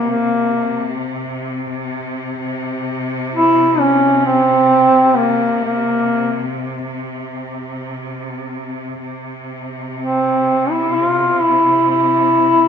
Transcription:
Already playing: C3
0.10 A#3
3.35 E4
3.80 C#4
4.26 C4
5.16 A#3
5.64 A#3
9.01 C3
9.99 C4
10.71 E4
10.94 F4
11.41 E4
11.90 E4

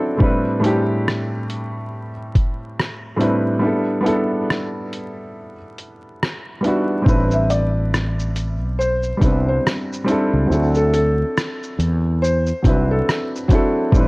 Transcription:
Already playing: F#3 C4 D4 E4 A4
0.17 A2 G3 C4 D4, kick
0.22 E4 B4
0.60 A2 G3 C4 D4
0.64 E4 G4, closed hi-hat
1.08 cross-stick
1.50 closed hi-hat
2.35 kick, closed hi-hat
2.79 cross-stick
3.16 A2 G3 C4 D4
3.21 E4 B4, closed hi-hat
3.59 G3 B3 D4
3.65 E4 A4
4.01 G3 B3 D4
4.06 E4 A4, closed hi-hat
4.50 cross-stick
4.93 closed hi-hat
5.78 closed hi-hat
6.23 cross-stick
6.61 G3 B3 D4, closed hi-hat
6.65 E4 F#4
7.02 G3 C4 D4
7.06 A1 E4 B4, kick, shaker
7.31 E5, shaker
7.50 D5, closed hi-hat, shaker
7.94 cross-stick, shaker
8.19 shaker
8.36 closed hi-hat, shaker
8.61 B1
8.79 C5, shaker
9.03 shaker
9.17 G3 B3 D4
9.21 C2 C4 E4 B4, kick, closed hi-hat, shaker
9.48 C5
9.66 cross-stick, shaker
9.93 shaker
10.04 G3 C4 D4, closed hi-hat, shaker
10.10 E4 A4
10.33 C#2
10.47 D2 F#3 C4 D4
10.52 E4 A4, shaker
10.75 A4, shaker
10.93 A4, closed hi-hat, shaker
11.37 cross-stick, shaker
11.63 shaker
11.79 E2, closed hi-hat, shaker
12.22 C5, shaker
12.46 shaker
12.63 C2 F#3 C4 D4, kick, closed hi-hat, shaker
12.68 E4 B4
12.91 A4
13.09 cross-stick, shaker
13.35 shaker
13.48 F#3 C4 D4, kick, closed hi-hat, shaker
13.53 E4 A4
13.92 A1 G3 C4 D4, kick, shaker
13.97 E4 B4

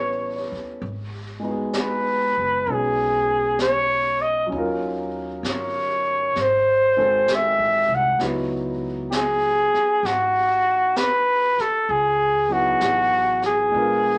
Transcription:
Already playing: A1 G3 B3 C#4 E4 A4 B4 C#5
0.36 C#5
0.52 D#2
0.80 G#1, brush sweep
1.39 G#3 B3
1.44 D#4 F#4
1.51 G#4
1.73 brush sweep, snare, hi-hat pedal
1.80 B4
2.37 F#1
2.66 B1 B3 C#4 D#4, brush sweep
2.70 F#4 G#4
3.59 C#5, brush sweep, snare, hi-hat pedal
4.21 D#5
4.46 F#3 C#4
4.51 D#2 D#4, brush sweep
4.56 F4 A#4
5.43 G1 C#5, brush sweep, snare, hi-hat pedal
6.35 G#1, brush sweep, snare
6.41 C5
6.97 D#3 G#3 C4 F#4 A4
7.28 brush sweep, snare, hi-hat pedal
7.35 E5
7.59 A1
7.88 C2
7.95 F#5
8.19 C#2 F#3 B3 D#4 E4, brush sweep, snare
8.23 F#4
9.11 G4 G#4, brush sweep, snare, hi-hat pedal
9.74 muted upright bass stroke, snare
10.03 G#1 F#4, brush sweep, snare
10.96 B4, brush sweep, snare, hi-hat pedal
11.58 A4, muted upright bass stroke, snare
11.89 C#2 G#4, brush sweep
12.49 F#3 B3 D#4 E4 F#4
12.53 G#4
12.80 A1, brush sweep, snare, hi-hat pedal
13.42 G#4, snare
13.71 A#1 G#3 B3 D4, brush sweep
13.76 F4 A#4

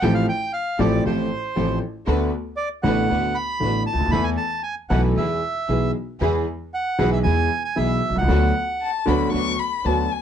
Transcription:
0.01 A1 A2 F3 A3 C4 F4 G4 A4 G5
0.14 F5
0.29 G5
0.53 F5
0.79 A1 A2 F3 A3 C4 F4 G4 A4 D5
1.05 A1 A2 F3 A3 C4 F4 G4 A4 C5
1.56 A1 A2 F3 A3 C4 F4 G4 A4
2.07 D2 D3 A3 B3 D4 F#4 B4
2.57 D5
2.83 A1 A2 D3 A3 B3 D4 F#4 B4 F#5
3.09 D2 D3 A3 B3 D4 F#4 B4
3.35 B5
3.60 A1 A2 D3 A3 B3 D4 F#4 B4
3.87 A5
3.93 C#2
3.99 D2
4.06 D#2
4.11 E2 E3 A3 B3 E4 A4 B4 B5
4.24 G#5
4.37 A5
4.63 G#5
4.89 B1 B2 E3 A3 B3 E4 A4 B4 F#5
5.16 E2 E3 G#3 B3 E4 G#4 B4 E5
5.68 B1 B2 E3 G#3 B3 E4 G#4 B4
6.20 E2 E3 G#3 B3 E4 G#4 B4
6.74 F#5
6.99 B1 B2 E3 G#3 B3 E4 G#4 B4
7.13 E5
7.23 E2 E3 G#3 B3 E4 G#4 B4 G#5
7.65 G#5
7.76 B1 B2 E3 G#3 B3 E4 G#4 B4 E5
8.09 B1
8.15 C2 F#5
8.21 C#2
8.28 D2 D3 F#3 B3 D4 F#4 B4
8.82 A5
9.06 D2 D3 F#3 B3 D4 F#4 B4 B5
9.31 D2 D3 F#3 B3 D4 F#4 B4 C#6
9.59 B5
9.84 D2 D3 F#3 B3 D4 F#4 B4 A5
10.12 G#5

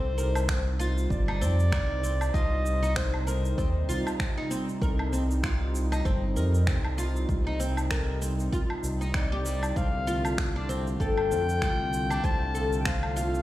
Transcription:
Already playing: C2 C3 G3 D#4 C5
0.18 A#4, shaker
0.35 low woodblock, shaker
0.48 C4, finger snap, kick, shaker
0.79 F4, shaker
0.98 shaker
1.10 G1 D5, kick, shaker
1.28 D#4, low woodblock
1.41 F2 C4, shaker
1.60 shaker
1.72 C2 A#4, finger snap, kick, shaker
2.03 C4, shaker
2.21 low woodblock, shaker
2.34 C2 F4 D#5, kick, shaker
2.66 shaker
2.83 D#4, shaker
2.96 C4 C5, finger snap, kick, shaker
3.14 low woodblock
3.27 A#4, shaker
3.45 shaker
3.58 D#2 C4, kick, shaker
3.89 C2 F4, shaker
4.07 low woodblock, shaker
4.20 finger snap, kick, shaker
4.37 D#4
4.51 C4, shaker
4.69 shaker
4.82 C2 C4 A#4, kick, shaker
4.99 low woodblock
5.13 C4, shaker
5.31 shaker
5.43 F4, finger snap, kick, shaker
5.75 shaker
5.92 D#4, low woodblock, shaker
6.05 G1 C4, kick, shaker
6.36 F2 A#4, shaker
6.54 shaker
6.67 C2 C4, finger snap, kick, shaker
6.85 low woodblock
6.98 F4, shaker
7.16 shaker
7.29 C2, kick, shaker
7.47 D#4
7.60 C4, shaker
7.77 low woodblock, shaker
7.91 A#4, finger snap, kick, shaker
8.22 C4, shaker
8.40 shaker
8.53 F4, kick, shaker
8.70 low woodblock
8.83 C2, shaker
9.01 D#4, shaker
9.14 D#4 D5, finger snap, kick, shaker
9.32 G4
9.45 G3, shaker
9.63 low woodblock, shaker
9.76 C2 D3 A3 C4 F4 F5, kick, shaker
10.07 F4, shaker
10.25 low woodblock, shaker
10.38 finger snap, kick, shaker
10.56 D4
10.69 C4, shaker
10.87 shaker
11.00 G1 A4 G5, kick, shaker
11.18 low woodblock
11.31 F2 C4, shaker
11.49 shaker
11.62 C2 F4, finger snap, kick, shaker
11.93 shaker
12.10 D4, low woodblock, shaker
12.24 C2 C4 A5, kick, shaker
12.55 A4, shaker
12.73 shaker
12.80 G5
12.85 C4 F5, finger snap, kick, shaker
13.03 low woodblock
13.16 F4, shaker
13.35 shaker

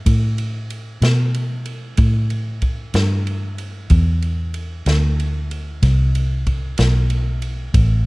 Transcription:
0.06 A2, kick, ride
0.38 ride
0.70 ride
1.02 B2, snare, ride
1.34 ride
1.66 ride
1.97 A2, kick, ride
2.30 ride
2.62 kick, ride
2.94 G2, snare, ride
3.27 ride
3.58 ride
3.90 E2, kick, ride
4.22 ride
4.54 ride
4.86 D2, snare, ride
5.20 ride
5.51 ride
5.82 C2, kick, snare, ride
6.15 ride
6.47 kick, ride
6.78 B1, snare, ride
7.10 ride
7.42 ride
7.74 A1, kick, ride

